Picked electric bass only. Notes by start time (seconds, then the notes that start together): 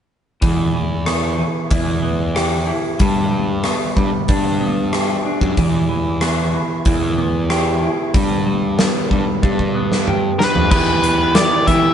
0.43 E2
1.71 E2
3.00 G2
3.97 G2
4.29 G2
5.41 F#2
5.58 E2
6.86 E2
8.15 G2
9.11 G2
9.43 G2
10.55 F2
10.72 E2
11.67 E3